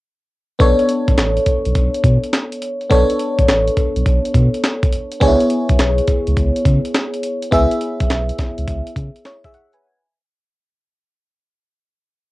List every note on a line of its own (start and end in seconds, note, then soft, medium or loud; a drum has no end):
0.59 0.74 B1 loud
0.59 2.86 B3 medium
0.59 2.86 D4 medium
0.59 2.87 A4 medium
0.59 2.87 C#5 medium
0.59 kick loud
0.59 closed hi-hat medium
0.79 closed hi-hat soft
0.89 closed hi-hat medium
1.08 1.15 A1 loud
1.08 kick medium
1.08 closed hi-hat medium
1.18 1.39 A1 loud
1.18 snare loud
1.18 clap loud
1.18 closed hi-hat medium
1.37 closed hi-hat medium
1.46 kick medium
1.46 closed hi-hat medium
1.65 1.73 B1 medium
1.65 closed hi-hat soft
1.75 1.89 B1 medium
1.75 kick medium
1.75 closed hi-hat medium
1.94 closed hi-hat medium
2.04 2.18 B2 loud
2.04 kick medium
2.04 closed hi-hat medium
2.23 closed hi-hat medium
2.33 snare medium
2.33 clap medium
2.33 closed hi-hat medium
2.52 closed hi-hat medium
2.62 closed hi-hat medium
2.81 closed hi-hat soft
2.90 3.05 B1 loud
2.90 5.17 B3 medium
2.90 5.17 D4 medium
2.90 5.18 A4 medium
2.90 5.18 C#5 medium
2.90 kick loud
2.90 closed hi-hat medium
3.10 closed hi-hat medium
3.19 closed hi-hat medium
3.39 3.46 A1 medium
3.39 kick medium
3.39 closed hi-hat medium
3.48 3.69 A1 loud
3.48 snare loud
3.48 clap loud
3.48 closed hi-hat medium
3.68 closed hi-hat medium
3.77 kick medium
3.77 closed hi-hat medium
3.96 4.03 B1 medium
3.96 closed hi-hat soft
4.06 4.20 B1 medium
4.06 kick medium
4.06 closed hi-hat medium
4.25 closed hi-hat medium
4.35 4.49 B2 loud
4.35 kick medium
4.35 closed hi-hat medium
4.54 closed hi-hat medium
4.64 snare loud
4.64 clap medium
4.64 closed hi-hat medium
4.83 kick loud
4.83 closed hi-hat medium
4.93 closed hi-hat medium
5.12 closed hi-hat medium
5.20 5.36 C#2 loud
5.20 7.48 B3 medium
5.20 5.30 D4 medium
5.20 7.48 G#4 medium
5.20 7.49 C#5 medium
5.20 kick loud
5.20 closed hi-hat medium
5.28 7.51 E4 medium
5.41 closed hi-hat medium
5.50 closed hi-hat medium
5.69 5.77 B1 medium
5.69 kick medium
5.69 closed hi-hat medium
5.79 6.00 B1 loud
5.79 snare loud
5.79 clap loud
5.79 closed hi-hat medium
5.98 closed hi-hat medium
6.08 kick medium
6.08 closed hi-hat medium
6.27 6.34 C#2 medium
6.27 closed hi-hat soft
6.37 6.51 C#2 loud
6.37 kick medium
6.37 closed hi-hat medium
6.56 closed hi-hat medium
6.65 6.80 C#3 loud
6.65 kick medium
6.65 closed hi-hat medium
6.85 closed hi-hat medium
6.94 snare loud
6.94 clap medium
6.94 closed hi-hat medium
7.14 closed hi-hat medium
7.23 closed hi-hat medium
7.42 closed hi-hat medium
7.51 7.66 C#2 loud
7.51 9.78 B3 medium
7.51 9.22 E4 medium
7.51 9.22 G#4 medium
7.51 9.23 E5 medium
7.51 kick loud
7.51 closed hi-hat medium
7.71 closed hi-hat medium
7.81 closed hi-hat medium
8.00 8.07 B1 medium
8.00 kick medium
8.00 closed hi-hat medium
8.10 8.31 B1 loud
8.10 snare loud
8.10 clap loud
8.10 closed hi-hat medium
8.29 closed hi-hat medium
8.38 kick medium
8.38 snare medium
8.38 closed hi-hat medium
8.58 8.65 C#2 medium
8.58 closed hi-hat soft
8.68 8.82 C#2 medium
8.68 kick medium
8.68 closed hi-hat medium
8.87 closed hi-hat medium
8.96 9.10 C#3 loud
8.96 kick medium
8.96 closed hi-hat medium
9.16 closed hi-hat medium
9.25 9.44 E4 soft
9.25 9.44 C#5 medium
9.25 snare loud
9.25 clap medium
9.25 closed hi-hat medium
9.44 9.54 G#4 medium
9.44 9.54 E5 medium
9.44 kick medium
9.44 closed hi-hat medium
9.54 9.72 F#5 medium
9.54 closed hi-hat medium
9.73 10.01 B4 medium
9.73 10.01 G#5 medium
9.73 closed hi-hat medium